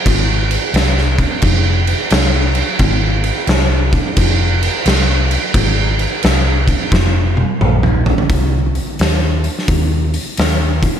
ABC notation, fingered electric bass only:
X:1
M:4/4
L:1/8
Q:"Swing" 1/4=87
K:Ablyd
V:1 name="Fingered electric bass" clef=bass
A,,,2 C,,2 F,,,2 C,,2 | A,,,2 C,,2 F,,,2 C,,2 | A,,,2 C,,2 F,,,2 B,,,2 | C,,2 E,,2 E,,2 E,,2 |]